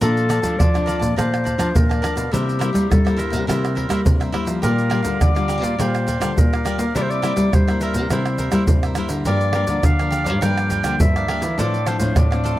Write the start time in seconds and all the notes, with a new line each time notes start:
0.01 A#2 F3 A3 D4 A4 A#4 D5 F5 A5, pandeiro, shaker, surdo
0.17 pandeiro, shaker
0.29 F3 A3 D4 A#4 D5 F5 A5, pandeiro, tamborim, shaker
0.42 F3 A3 D4 D5 F5 A5, pandeiro, shaker, surdo
0.59 F2 F3 D5, pandeiro, tamborim, shaker, surdo
0.74 F3 A3 D4 D5 F5 A5, pandeiro, tamborim, shaker
0.86 A#4 D5 F5 A5, pandeiro, shaker
1.00 A#2 D5 F5 A5, pandeiro, shaker, surdo
1.16 A#2 F3 A3 D4 A#4 C5 D5 F5 A5, pandeiro, tamborim, shaker, surdo
1.34 pandeiro, tamborim, shaker
1.44 A#4 D5 F5 A5, pandeiro, shaker, surdo
1.58 F3 A3 D4 A#4 D5 F5 A5, pandeiro, tamborim, shaker, surdo
1.75 F2 A#2 A#4, pandeiro, shaker, surdo
1.89 D5 F5 A5, pandeiro, tamborim, shaker, surdo
2.02 F3 A3 D4 A#4 D5 F5 A5, pandeiro, tamborim, shaker
2.16 B2 D5 F5 A5, pandeiro, shaker
2.32 C3 G3 A#3 E4 G4 A#4 C5 E5, pandeiro, shaker, surdo
2.49 pandeiro, shaker
2.59 G3 A#3 E4 A#4 C5 E5, pandeiro, tamborim, shaker
2.73 G3 A#3 E4 A#4 C5 E5, pandeiro, shaker, surdo
2.90 G2 G3 A4, pandeiro, tamborim, shaker, surdo
3.05 G3 A#3 E4 A#4 C5 E5, pandeiro, tamborim, shaker
3.17 E4 A#4 C5 E5, pandeiro, shaker
3.30 C3 A#4 C5 E5, pandeiro, shaker, surdo
3.47 C3 G3 A#3 E4 A#4 C5 E5, pandeiro, tamborim, shaker, surdo
3.65 pandeiro, tamborim, shaker
3.75 E4 A#4 C5 E5, pandeiro, surdo
3.89 G3 A#3 E4 A#4 C5 E5, pandeiro, tamborim, shaker, surdo
4.05 G2 C3, pandeiro, shaker, surdo
4.20 A#4 C5 E5, pandeiro, tamborim, shaker, surdo
4.32 G3 A#3 E4 A#4 C5 E5, pandeiro, tamborim
4.45 F3 A#4 C5 E5, pandeiro, shaker
4.62 A#2 G3 D4 F4 G4 A#4 D5 F5, pandeiro, shaker, surdo
4.79 pandeiro, shaker
4.90 G3 D4 F4 G4 A#4 D5 F5, pandeiro, tamborim
5.03 D3 G3 D4 F4 A#4 D5 F5, pandeiro, shaker, surdo
5.21 A#2 D3 D5, pandeiro, tamborim, shaker, surdo
5.35 G3 D4 F4 A#4 D5 F5, pandeiro, tamborim, shaker
5.48 G4 A#4 D5 F5, pandeiro, shaker
5.62 A#2 A#4 D5 F5, pandeiro, shaker, surdo
5.79 A#2 G3 D4 F4 G4 A#4 C5 D5 F5, pandeiro, tamborim, shaker, surdo
5.95 pandeiro, tamborim, shaker
6.07 G4 A#4 D5 F5, pandeiro, shaker, surdo
6.20 D3 G3 D4 F4 G4 A#4 D5 F5, pandeiro, tamborim, shaker, surdo
6.36 A#2 A#4, pandeiro, shaker, surdo
6.53 A#4 D5 F5, pandeiro, tamborim, shaker
6.64 G3 D4 F4 G4 A#4 D5 F5, pandeiro, tamborim, shaker
6.78 A#3 A#4 D5 F5, pandeiro, shaker
6.95 C3 G3 A#3 E4 A#4 C5 D5 E5, pandeiro, shaker, surdo
7.02 C5
7.10 D5, pandeiro, shaker
7.22 G3 A#3 E4 A#4 C5 E5, pandeiro, tamborim, shaker
7.36 G3 A#4 C5 E5, pandeiro, shaker, surdo
7.52 G2 G3 C5, pandeiro, tamborim, shaker, surdo
7.67 G3 A#3 E4 A#4 C5 E5, pandeiro, tamborim, shaker
7.81 E4 A#4 C5 E5, pandeiro, shaker
7.94 C3 A#4 C5, pandeiro, shaker, surdo
8.10 C3 G3 A#3 E4 A#4 C5 E5, pandeiro, tamborim, shaker, surdo
8.26 pandeiro, tamborim, shaker
8.38 E4 A#4 C5 E5, pandeiro, shaker, surdo
8.52 G3 A#3 E4 A#4 C5 E5, pandeiro, tamborim, shaker, surdo
8.67 G2 C3, pandeiro, shaker, surdo
8.83 A#4 C5 E5, pandeiro, tamborim, shaker
8.95 G3 A#3 E4 A#4 C5, pandeiro, tamborim, shaker
8.99 E5
9.09 D3 A#4 C5 E5, pandeiro, shaker
9.25 G2 F3 A#3 D4 G4 A#4 D5 F5, pandeiro, shaker, surdo
9.41 pandeiro, shaker
9.53 F3 A#3 D4 G4 A#4 D5 F5, pandeiro, tamborim
9.67 D3 F3 A#3 D4 A#4 D5 F5, pandeiro, shaker, surdo
9.83 D3 F5, pandeiro, tamborim, shaker, surdo
9.99 F3 A#3 D4 A#4 D5 F5, pandeiro, tamborim, shaker
10.11 G4 A#4 D5 F5, pandeiro, shaker
10.24 G2 A#4 D5 F5, pandeiro, shaker, surdo
10.41 G2 F3 A#3 D4 G4 A#4 D5 F5 G5, pandeiro, tamborim, shaker, surdo
10.58 pandeiro, tamborim, shaker
10.70 G4 A#4 D5 F5 G5, pandeiro, shaker, surdo
10.84 D3 F3 A#3 D4 G4 A#4 D5 F5, pandeiro, tamborim, shaker, surdo
11.00 G2 D3 E5, pandeiro, shaker, surdo
11.16 A#4 D5 F5, pandeiro, tamborim, shaker, surdo
11.28 F3 A#3 D4 G4 A#4 D5 F5, pandeiro, tamborim
11.42 E3 A#4 D5 F5, pandeiro, shaker
11.58 A2 F3 C4 D4 A4 C5 D5 F5, pandeiro, shaker, surdo
11.74 pandeiro, shaker
11.86 F3 C4 D4 A4 C5 F5, pandeiro, tamborim, shaker
11.99 A2 F3 C4 D4 A4 C5 F5, pandeiro, shaker, surdo
12.16 A2 D5, pandeiro, tamborim, shaker, surdo
12.31 F3 C4 D4 A4 C5 F5, pandeiro, tamborim, shaker
12.44 D4 A4 C5 F5, pandeiro, shaker